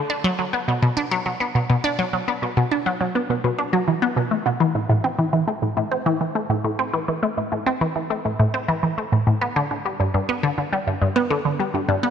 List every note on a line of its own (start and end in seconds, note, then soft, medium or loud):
0.10 0.20 D4 medium
0.24 0.31 F#3 loud
0.39 0.49 F#3 medium
0.53 0.60 B3 medium
0.68 0.78 B2 medium
0.83 0.89 B2 loud
0.97 1.07 D4 loud
1.11 1.18 F#3 loud
1.26 1.36 F#3 medium
1.40 1.47 B3 medium
1.55 1.65 B2 medium
1.70 1.76 B2 loud
1.84 1.94 D4 loud
1.99 2.06 F#3 loud
2.13 2.23 F#3 medium
2.28 2.35 B3 medium
2.42 2.53 B2 medium
2.57 2.64 B2 loud
2.71 2.82 D4 loud
2.86 2.93 F#3 medium
3.01 3.11 F#3 medium
3.15 3.22 B3 medium
3.30 3.40 B2 medium
3.44 3.51 B2 loud
3.59 3.69 D4 medium
3.73 3.80 F#3 loud
3.88 3.92 E3 medium
4.02 4.09 B3 loud
4.17 4.24 B2 medium
4.31 4.36 A3 medium
4.46 4.50 B2 medium
4.60 4.71 E3 loud
4.75 4.85 A2 medium
4.89 4.97 A2 loud
5.04 5.15 C4 loud
5.19 5.26 E3 medium
5.33 5.44 E3 medium
5.48 5.55 A3 medium
5.62 5.73 A2 medium
5.77 5.84 A2 loud
5.92 6.02 C4 loud
6.06 6.13 E3 loud
6.21 6.31 E3 medium
6.35 6.42 A3 medium
6.50 6.60 A2 medium
6.64 6.71 A2 loud
6.79 6.89 C4 loud
6.93 7.01 E3 medium
7.08 7.19 E3 medium
7.23 7.30 A3 medium
7.37 7.48 A2 medium
7.52 7.59 A2 medium
7.66 7.77 C4 loud
7.81 7.88 E3 loud
7.96 8.06 E3 medium
8.10 8.17 A3 medium
8.25 8.35 A2 medium
8.39 8.46 A2 loud
8.54 8.64 C4 loud
8.68 8.75 E3 loud
8.83 8.93 E3 medium
8.98 9.05 A3 medium
9.12 9.23 A2 medium
9.27 9.34 A2 medium
9.41 9.52 B3 loud
9.56 9.63 D3 loud
9.71 9.81 D3 medium
9.85 9.92 G3 medium
10.00 10.10 G2 medium
10.14 10.21 G2 loud
10.29 10.39 B3 loud
10.43 10.50 D3 loud
10.58 10.68 D3 medium
10.73 10.79 G3 medium
10.87 10.97 G2 medium
11.02 11.08 G2 loud
11.16 11.26 B3 loud
11.30 11.37 D3 loud
11.45 11.55 D3 medium
11.59 11.67 G3 medium
11.74 11.84 G2 medium
11.88 11.96 G2 loud
12.03 12.10 B3 loud